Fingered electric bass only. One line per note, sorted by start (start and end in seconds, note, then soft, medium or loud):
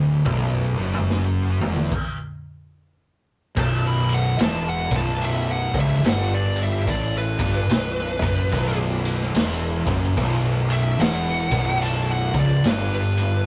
0.00 0.22 D1 medium
0.26 0.75 B0 medium
0.80 1.58 F#1 medium
1.62 1.90 E1 medium
3.57 4.35 B0 medium
4.40 4.88 E1 medium
4.91 5.70 B0 medium
5.74 6.02 C#1 medium
6.05 6.83 G1 loud
6.87 7.36 A1 medium
7.39 7.68 G1 medium
7.70 8.18 B0 medium
8.22 8.50 F#1 loud
8.53 9.31 B0 loud
9.36 9.84 E1 loud
9.87 10.15 F#1 loud
10.17 10.96 B0 loud
11.00 11.48 E1 medium
11.51 12.30 B0 loud
12.34 12.62 C#1 loud
12.65 13.43 G1 medium